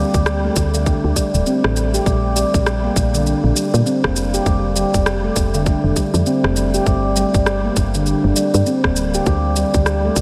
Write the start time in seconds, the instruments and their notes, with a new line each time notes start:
Already playing: handpan G3
0.14 fm bass D2, kick, shaker
0.26 cross-stick, shaker
0.44 handpan A3
0.56 fm bass D2, kick, shaker
0.74 handpan D3, shaker
0.86 kick, shaker
1.04 fm bass D2
1.16 handpan G3, kick, shaker
1.34 fm bass D1, shaker
1.46 handpan C4, shaker
1.64 fm bass A1, cross-stick
1.76 handpan G3, shaker
1.94 handpan G4, shaker
2.06 fm bass A#1, handpan G3, kick, shaker
2.36 handpan G3, shaker
2.54 fm bass A#1, kick, shaker
2.66 cross-stick, shaker
2.84 handpan A#3
2.96 fm bass A#1, kick, shaker
3.14 handpan D3, shaker
3.26 shaker
3.44 fm bass A#1
3.56 handpan G3, shaker
3.74 fm bass A#2, shaker
3.86 handpan C4, shaker
4.04 fm bass F1, handpan A#3, kick, cross-stick
4.16 handpan G3, shaker
4.34 handpan G4, shaker
4.46 fm bass F1, handpan G3, kick, shaker
4.76 handpan G3, shaker
4.94 fm bass F1, kick, shaker
5.06 cross-stick, shaker
5.24 handpan A3
5.36 fm bass F1, kick, shaker
5.54 handpan D3, shaker
5.66 kick, shaker
5.84 fm bass F1
5.96 handpan G3, kick, shaker
6.14 fm bass F2, shaker
6.26 handpan C4, shaker
6.44 fm bass F1, cross-stick
6.56 handpan G3, shaker
6.74 handpan G4, shaker
6.86 fm bass G1, handpan G3, kick, shaker
7.16 handpan G3, shaker
7.34 fm bass G1, kick, shaker
7.46 cross-stick, shaker
7.64 handpan A#3
7.76 fm bass G1, kick, shaker
7.94 handpan D3, shaker
8.06 shaker
8.24 fm bass G1
8.36 handpan G3, shaker
8.54 fm bass G2, shaker
8.66 handpan C4, shaker
8.84 fm bass D1, handpan A#3, kick, cross-stick
8.96 handpan G3, shaker
9.14 handpan G4, shaker
9.26 fm bass D2, handpan G3, kick, shaker
9.56 handpan G3, shaker
9.74 fm bass D2, kick, shaker
9.86 cross-stick, shaker
10.05 handpan A3
10.16 fm bass D2, kick, shaker